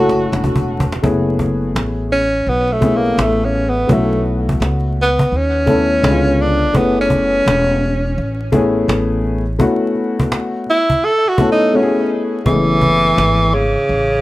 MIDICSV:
0, 0, Header, 1, 6, 480
1, 0, Start_track
1, 0, Key_signature, 3, "minor"
1, 0, Tempo, 714286
1, 695, Time_signature, 4, 2, 24, 8
1, 9551, End_track
2, 0, Start_track
2, 0, Title_t, "Grand piano"
2, 0, Program_c, 0, 0
2, 0, Note_on_c, 0, 57, 77
2, 0, Note_on_c, 0, 61, 72
2, 0, Note_on_c, 0, 64, 68
2, 0, Note_on_c, 0, 66, 73
2, 0, Note_on_c, 0, 69, 88
2, 561, Note_off_c, 0, 57, 0
2, 563, Note_off_c, 0, 61, 0
2, 564, Note_off_c, 0, 64, 0
2, 566, Note_off_c, 0, 66, 0
2, 570, Note_off_c, 0, 69, 0
2, 689, Note_on_c, 0, 57, 74
2, 691, Note_on_c, 0, 59, 74
2, 694, Note_on_c, 0, 61, 72
2, 699, Note_on_c, 0, 64, 76
2, 705, Note_on_c, 0, 68, 89
2, 1458, Note_off_c, 0, 57, 0
2, 1459, Note_off_c, 0, 59, 0
2, 1461, Note_off_c, 0, 61, 0
2, 1463, Note_off_c, 0, 64, 0
2, 1466, Note_off_c, 0, 68, 0
2, 1888, Note_on_c, 0, 57, 74
2, 1893, Note_on_c, 0, 59, 74
2, 1897, Note_on_c, 0, 61, 65
2, 1905, Note_on_c, 0, 64, 66
2, 1907, Note_on_c, 0, 68, 75
2, 2484, Note_off_c, 0, 57, 0
2, 2487, Note_off_c, 0, 59, 0
2, 2489, Note_off_c, 0, 61, 0
2, 2493, Note_off_c, 0, 64, 0
2, 2493, Note_off_c, 0, 68, 0
2, 2603, Note_on_c, 0, 57, 66
2, 2605, Note_on_c, 0, 59, 62
2, 2613, Note_on_c, 0, 61, 60
2, 2618, Note_on_c, 0, 64, 65
2, 2620, Note_on_c, 0, 66, 75
2, 3375, Note_off_c, 0, 57, 0
2, 3376, Note_off_c, 0, 59, 0
2, 3380, Note_off_c, 0, 61, 0
2, 3382, Note_off_c, 0, 64, 0
2, 3383, Note_off_c, 0, 66, 0
2, 3806, Note_on_c, 0, 57, 74
2, 3811, Note_on_c, 0, 59, 71
2, 3817, Note_on_c, 0, 61, 70
2, 3822, Note_on_c, 0, 64, 70
2, 3822, Note_on_c, 0, 69, 88
2, 4040, Note_off_c, 0, 59, 0
2, 4046, Note_on_c, 0, 56, 75
2, 4048, Note_off_c, 0, 61, 0
2, 4050, Note_off_c, 0, 57, 0
2, 4050, Note_on_c, 0, 59, 72
2, 4057, Note_off_c, 0, 64, 0
2, 4058, Note_on_c, 0, 61, 69
2, 4059, Note_off_c, 0, 69, 0
2, 4061, Note_on_c, 0, 50, 77
2, 4067, Note_on_c, 0, 64, 65
2, 4107, Note_on_c, 0, 65, 90
2, 4118, Note_off_c, 0, 64, 0
2, 4464, Note_off_c, 0, 56, 0
2, 4466, Note_off_c, 0, 59, 0
2, 4470, Note_off_c, 0, 61, 0
2, 4471, Note_off_c, 0, 50, 0
2, 4494, Note_off_c, 0, 65, 0
2, 4525, Note_on_c, 0, 57, 72
2, 4533, Note_on_c, 0, 59, 63
2, 4535, Note_on_c, 0, 61, 64
2, 4540, Note_on_c, 0, 64, 63
2, 4544, Note_on_c, 0, 68, 70
2, 5296, Note_off_c, 0, 57, 0
2, 5300, Note_off_c, 0, 59, 0
2, 5301, Note_off_c, 0, 61, 0
2, 5303, Note_off_c, 0, 64, 0
2, 5305, Note_off_c, 0, 68, 0
2, 5726, Note_on_c, 0, 57, 95
2, 5732, Note_on_c, 0, 59, 86
2, 5737, Note_on_c, 0, 61, 89
2, 5740, Note_on_c, 0, 64, 85
2, 5744, Note_on_c, 0, 68, 102
2, 6323, Note_off_c, 0, 57, 0
2, 6326, Note_off_c, 0, 59, 0
2, 6329, Note_off_c, 0, 61, 0
2, 6330, Note_off_c, 0, 64, 0
2, 6332, Note_off_c, 0, 68, 0
2, 6443, Note_on_c, 0, 57, 86
2, 6449, Note_on_c, 0, 59, 80
2, 6453, Note_on_c, 0, 61, 73
2, 6455, Note_on_c, 0, 64, 82
2, 6460, Note_on_c, 0, 66, 94
2, 7215, Note_off_c, 0, 57, 0
2, 7218, Note_off_c, 0, 59, 0
2, 7220, Note_off_c, 0, 61, 0
2, 7221, Note_off_c, 0, 64, 0
2, 7223, Note_off_c, 0, 66, 0
2, 7646, Note_on_c, 0, 57, 81
2, 7650, Note_on_c, 0, 59, 71
2, 7657, Note_on_c, 0, 61, 73
2, 7661, Note_on_c, 0, 64, 74
2, 7663, Note_on_c, 0, 69, 85
2, 7876, Note_off_c, 0, 57, 0
2, 7882, Note_off_c, 0, 59, 0
2, 7886, Note_off_c, 0, 61, 0
2, 7887, Note_on_c, 0, 57, 86
2, 7891, Note_off_c, 0, 64, 0
2, 7892, Note_on_c, 0, 59, 75
2, 7896, Note_on_c, 0, 61, 73
2, 7899, Note_off_c, 0, 69, 0
2, 7901, Note_on_c, 0, 64, 79
2, 7904, Note_on_c, 0, 66, 72
2, 7949, Note_on_c, 0, 68, 94
2, 7957, Note_off_c, 0, 66, 0
2, 8304, Note_off_c, 0, 57, 0
2, 8307, Note_off_c, 0, 59, 0
2, 8309, Note_off_c, 0, 61, 0
2, 8311, Note_off_c, 0, 64, 0
2, 8335, Note_off_c, 0, 68, 0
2, 8359, Note_on_c, 0, 56, 53
2, 8363, Note_on_c, 0, 59, 63
2, 8368, Note_on_c, 0, 61, 56
2, 8376, Note_on_c, 0, 64, 61
2, 8377, Note_on_c, 0, 68, 73
2, 8403, Note_on_c, 0, 57, 68
2, 8424, Note_off_c, 0, 56, 0
2, 9135, Note_off_c, 0, 59, 0
2, 9137, Note_off_c, 0, 61, 0
2, 9141, Note_off_c, 0, 64, 0
2, 9142, Note_off_c, 0, 68, 0
2, 9155, Note_off_c, 0, 57, 0
2, 9551, End_track
3, 0, Start_track
3, 0, Title_t, "Tenor saxophone"
3, 0, Program_c, 1, 66
3, 0, Note_on_c, 1, 66, 83
3, 456, Note_off_c, 1, 66, 0
3, 1427, Note_on_c, 1, 61, 105
3, 1675, Note_on_c, 1, 59, 95
3, 1685, Note_off_c, 1, 61, 0
3, 1829, Note_on_c, 1, 57, 80
3, 1839, Note_off_c, 1, 59, 0
3, 1990, Note_on_c, 1, 58, 90
3, 2000, Note_off_c, 1, 57, 0
3, 2159, Note_on_c, 1, 57, 79
3, 2169, Note_off_c, 1, 58, 0
3, 2317, Note_on_c, 1, 61, 87
3, 2327, Note_off_c, 1, 57, 0
3, 2483, Note_on_c, 1, 59, 90
3, 2493, Note_off_c, 1, 61, 0
3, 2639, Note_on_c, 1, 57, 76
3, 2649, Note_off_c, 1, 59, 0
3, 2867, Note_off_c, 1, 57, 0
3, 3372, Note_on_c, 1, 59, 92
3, 3609, Note_on_c, 1, 61, 105
3, 3619, Note_off_c, 1, 59, 0
3, 4312, Note_on_c, 1, 62, 102
3, 4322, Note_off_c, 1, 61, 0
3, 4548, Note_on_c, 1, 59, 91
3, 4559, Note_off_c, 1, 62, 0
3, 4702, Note_off_c, 1, 59, 0
3, 4712, Note_on_c, 1, 61, 108
3, 5877, Note_off_c, 1, 61, 0
3, 7190, Note_on_c, 1, 64, 100
3, 7424, Note_on_c, 1, 69, 114
3, 7435, Note_off_c, 1, 64, 0
3, 7583, Note_on_c, 1, 66, 92
3, 7593, Note_off_c, 1, 69, 0
3, 7739, Note_off_c, 1, 66, 0
3, 7743, Note_on_c, 1, 63, 92
3, 7903, Note_on_c, 1, 61, 80
3, 7913, Note_off_c, 1, 63, 0
3, 8139, Note_off_c, 1, 61, 0
3, 8376, Note_on_c, 1, 52, 110
3, 9102, Note_on_c, 1, 49, 107
3, 9112, Note_off_c, 1, 52, 0
3, 9551, Note_off_c, 1, 49, 0
3, 9551, End_track
4, 0, Start_track
4, 0, Title_t, "Upright bass"
4, 0, Program_c, 2, 32
4, 0, Note_on_c, 2, 30, 84
4, 189, Note_off_c, 2, 30, 0
4, 217, Note_on_c, 2, 28, 86
4, 672, Note_off_c, 2, 28, 0
4, 696, Note_on_c, 2, 30, 81
4, 1152, Note_off_c, 2, 30, 0
4, 1178, Note_on_c, 2, 33, 70
4, 1633, Note_off_c, 2, 33, 0
4, 1656, Note_on_c, 2, 35, 80
4, 2112, Note_off_c, 2, 35, 0
4, 2135, Note_on_c, 2, 33, 88
4, 2591, Note_off_c, 2, 33, 0
4, 2617, Note_on_c, 2, 35, 94
4, 3072, Note_off_c, 2, 35, 0
4, 3094, Note_on_c, 2, 37, 76
4, 3550, Note_off_c, 2, 37, 0
4, 3573, Note_on_c, 2, 39, 77
4, 4030, Note_off_c, 2, 39, 0
4, 4054, Note_on_c, 2, 37, 94
4, 4533, Note_off_c, 2, 37, 0
4, 4533, Note_on_c, 2, 30, 98
4, 4990, Note_off_c, 2, 30, 0
4, 5015, Note_on_c, 2, 28, 84
4, 5471, Note_off_c, 2, 28, 0
4, 5496, Note_on_c, 2, 33, 82
4, 5951, Note_off_c, 2, 33, 0
4, 5970, Note_on_c, 2, 33, 85
4, 6428, Note_off_c, 2, 33, 0
4, 8371, Note_on_c, 2, 30, 87
4, 8829, Note_off_c, 2, 30, 0
4, 8854, Note_on_c, 2, 32, 87
4, 9231, Note_off_c, 2, 32, 0
4, 9335, Note_on_c, 2, 33, 89
4, 9551, Note_off_c, 2, 33, 0
4, 9551, End_track
5, 0, Start_track
5, 0, Title_t, "Cajon"
5, 63, Note_on_c, 9, 38, 76
5, 130, Note_off_c, 9, 38, 0
5, 137, Note_on_c, 9, 38, 27
5, 204, Note_off_c, 9, 38, 0
5, 218, Note_on_c, 9, 38, 47
5, 223, Note_off_c, 9, 38, 0
5, 223, Note_on_c, 9, 38, 89
5, 290, Note_off_c, 9, 38, 0
5, 294, Note_on_c, 9, 36, 81
5, 361, Note_off_c, 9, 36, 0
5, 372, Note_on_c, 9, 38, 25
5, 374, Note_on_c, 9, 36, 86
5, 439, Note_off_c, 9, 38, 0
5, 441, Note_off_c, 9, 36, 0
5, 459, Note_on_c, 9, 38, 38
5, 526, Note_off_c, 9, 38, 0
5, 539, Note_on_c, 9, 36, 101
5, 606, Note_off_c, 9, 36, 0
5, 615, Note_on_c, 9, 38, 29
5, 621, Note_off_c, 9, 38, 0
5, 621, Note_on_c, 9, 38, 88
5, 688, Note_off_c, 9, 38, 0
5, 696, Note_on_c, 9, 36, 108
5, 763, Note_off_c, 9, 36, 0
5, 935, Note_on_c, 9, 36, 86
5, 1002, Note_off_c, 9, 36, 0
5, 1094, Note_on_c, 9, 38, 27
5, 1161, Note_off_c, 9, 38, 0
5, 1183, Note_on_c, 9, 38, 100
5, 1251, Note_off_c, 9, 38, 0
5, 1416, Note_on_c, 9, 38, 41
5, 1483, Note_off_c, 9, 38, 0
5, 1570, Note_on_c, 9, 38, 23
5, 1637, Note_off_c, 9, 38, 0
5, 1662, Note_on_c, 9, 38, 47
5, 1729, Note_off_c, 9, 38, 0
5, 1894, Note_on_c, 9, 36, 97
5, 1961, Note_off_c, 9, 36, 0
5, 2054, Note_on_c, 9, 38, 24
5, 2122, Note_off_c, 9, 38, 0
5, 2141, Note_on_c, 9, 38, 122
5, 2208, Note_off_c, 9, 38, 0
5, 2380, Note_on_c, 9, 38, 37
5, 2447, Note_off_c, 9, 38, 0
5, 2532, Note_on_c, 9, 38, 30
5, 2599, Note_off_c, 9, 38, 0
5, 2615, Note_on_c, 9, 36, 102
5, 2683, Note_off_c, 9, 36, 0
5, 2858, Note_on_c, 9, 38, 30
5, 2926, Note_off_c, 9, 38, 0
5, 3017, Note_on_c, 9, 36, 91
5, 3084, Note_off_c, 9, 36, 0
5, 3104, Note_on_c, 9, 38, 95
5, 3172, Note_off_c, 9, 38, 0
5, 3337, Note_on_c, 9, 38, 40
5, 3404, Note_off_c, 9, 38, 0
5, 3489, Note_on_c, 9, 36, 93
5, 3556, Note_off_c, 9, 36, 0
5, 3581, Note_on_c, 9, 38, 49
5, 3648, Note_off_c, 9, 38, 0
5, 3812, Note_on_c, 9, 36, 95
5, 3879, Note_off_c, 9, 36, 0
5, 3972, Note_on_c, 9, 38, 28
5, 4039, Note_off_c, 9, 38, 0
5, 4060, Note_on_c, 9, 38, 113
5, 4127, Note_off_c, 9, 38, 0
5, 4298, Note_on_c, 9, 38, 41
5, 4365, Note_off_c, 9, 38, 0
5, 4449, Note_on_c, 9, 38, 30
5, 4516, Note_off_c, 9, 38, 0
5, 4533, Note_on_c, 9, 36, 104
5, 4600, Note_off_c, 9, 36, 0
5, 4772, Note_on_c, 9, 36, 85
5, 4839, Note_off_c, 9, 36, 0
5, 4932, Note_on_c, 9, 38, 29
5, 4999, Note_off_c, 9, 38, 0
5, 5024, Note_on_c, 9, 38, 102
5, 5091, Note_off_c, 9, 38, 0
5, 5252, Note_on_c, 9, 38, 40
5, 5319, Note_off_c, 9, 38, 0
5, 5407, Note_on_c, 9, 38, 24
5, 5474, Note_off_c, 9, 38, 0
5, 5496, Note_on_c, 9, 38, 48
5, 5563, Note_off_c, 9, 38, 0
5, 5729, Note_on_c, 9, 36, 102
5, 5796, Note_off_c, 9, 36, 0
5, 5889, Note_on_c, 9, 38, 26
5, 5956, Note_off_c, 9, 38, 0
5, 5976, Note_on_c, 9, 38, 126
5, 6043, Note_off_c, 9, 38, 0
5, 6208, Note_on_c, 9, 38, 41
5, 6276, Note_off_c, 9, 38, 0
5, 6361, Note_on_c, 9, 38, 32
5, 6429, Note_off_c, 9, 38, 0
5, 6449, Note_on_c, 9, 36, 109
5, 6516, Note_off_c, 9, 36, 0
5, 6686, Note_on_c, 9, 38, 29
5, 6753, Note_off_c, 9, 38, 0
5, 6846, Note_on_c, 9, 38, 38
5, 6851, Note_on_c, 9, 36, 96
5, 6914, Note_off_c, 9, 38, 0
5, 6918, Note_off_c, 9, 36, 0
5, 6934, Note_on_c, 9, 38, 105
5, 7001, Note_off_c, 9, 38, 0
5, 7087, Note_on_c, 9, 38, 18
5, 7154, Note_off_c, 9, 38, 0
5, 7166, Note_on_c, 9, 38, 46
5, 7233, Note_off_c, 9, 38, 0
5, 7323, Note_on_c, 9, 36, 87
5, 7390, Note_off_c, 9, 36, 0
5, 7409, Note_on_c, 9, 38, 49
5, 7476, Note_off_c, 9, 38, 0
5, 7563, Note_on_c, 9, 38, 20
5, 7631, Note_off_c, 9, 38, 0
5, 7647, Note_on_c, 9, 36, 103
5, 7715, Note_off_c, 9, 36, 0
5, 7805, Note_on_c, 9, 38, 28
5, 7872, Note_off_c, 9, 38, 0
5, 8372, Note_on_c, 9, 36, 100
5, 8439, Note_off_c, 9, 36, 0
5, 8611, Note_on_c, 9, 36, 79
5, 8679, Note_off_c, 9, 36, 0
5, 8770, Note_on_c, 9, 38, 26
5, 8837, Note_off_c, 9, 38, 0
5, 8859, Note_on_c, 9, 38, 91
5, 8926, Note_off_c, 9, 38, 0
5, 9093, Note_on_c, 9, 38, 41
5, 9160, Note_off_c, 9, 38, 0
5, 9249, Note_on_c, 9, 38, 21
5, 9316, Note_off_c, 9, 38, 0
5, 9339, Note_on_c, 9, 38, 47
5, 9407, Note_off_c, 9, 38, 0
5, 9551, End_track
6, 0, Start_track
6, 0, Title_t, "Muted upright bass strokes"
6, 9252, Note_on_c, 9, 29, 37
6, 9319, Note_off_c, 9, 29, 0
6, 9551, End_track
0, 0, End_of_file